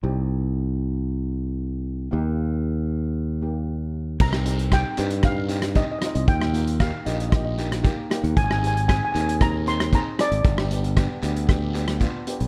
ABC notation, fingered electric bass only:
X:1
M:4/4
L:1/16
Q:1/4=115
K:Cm
V:1 name="Fingered electric bass" clef=bass
C,,16 | E,,16 | C,,6 G,,8 z C,, | E,,6 B,,,8 z E,, |
A,,,6 E,,8 z A,,, | G,,,6 D,,8 z =B,,, |]